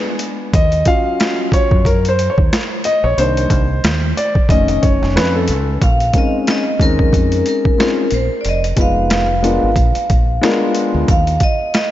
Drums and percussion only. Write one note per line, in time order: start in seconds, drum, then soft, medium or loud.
0.19 closed hi-hat medium
0.54 kick loud
0.54 closed hi-hat medium
0.72 closed hi-hat soft
0.85 kick medium
0.85 closed hi-hat medium
1.20 snare loud
1.20 closed hi-hat medium
1.52 kick medium
1.52 closed hi-hat medium
1.71 kick loud
1.85 kick medium
1.85 closed hi-hat medium
2.05 closed hi-hat medium
2.19 closed hi-hat medium
2.38 kick medium
2.53 snare loud
2.53 closed hi-hat loud
2.84 closed hi-hat medium
3.18 closed hi-hat medium
3.37 closed hi-hat medium
3.50 kick medium
3.50 closed hi-hat medium
3.84 snare loud
3.84 closed hi-hat medium
4.17 closed hi-hat medium
4.35 kick medium
4.49 kick loud
4.49 closed hi-hat loud
4.68 closed hi-hat medium
4.83 kick loud
4.83 closed hi-hat medium
5.03 snare soft
5.17 snare loud
5.17 closed hi-hat loud
5.48 closed hi-hat medium
5.82 kick loud
5.82 closed hi-hat medium
6.00 closed hi-hat soft
6.13 kick medium
6.13 closed hi-hat medium
6.47 snare medium
6.47 closed hi-hat medium
6.80 kick medium
6.80 closed hi-hat medium
6.99 kick medium
7.13 kick medium
7.13 closed hi-hat medium
7.32 closed hi-hat medium
7.46 closed hi-hat medium
7.65 kick medium
7.80 snare loud
7.80 closed hi-hat loud
8.11 closed hi-hat medium
8.45 closed hi-hat medium
8.64 closed hi-hat soft
8.77 kick medium
8.77 closed hi-hat medium
9.10 snare loud
9.10 closed hi-hat medium
9.44 closed hi-hat medium
9.76 kick medium
9.76 closed hi-hat medium
9.95 closed hi-hat medium
10.10 kick medium
10.10 closed hi-hat medium
10.43 snare loud
10.43 closed hi-hat loud
10.75 closed hi-hat medium
11.08 kick loud
11.08 closed hi-hat medium
11.27 closed hi-hat soft
11.40 kick medium
11.40 closed hi-hat medium
11.74 snare loud
11.74 closed hi-hat medium